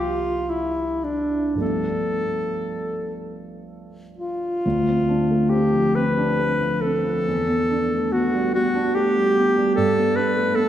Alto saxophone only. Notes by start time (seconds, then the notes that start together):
0.00 F4
0.49 E4
1.04 D4
1.61 A4
4.17 F4
5.50 G4
5.95 B4
6.81 A4
8.12 F#4
8.54 F#4
8.95 G4
9.75 A4
10.16 B4
10.55 A4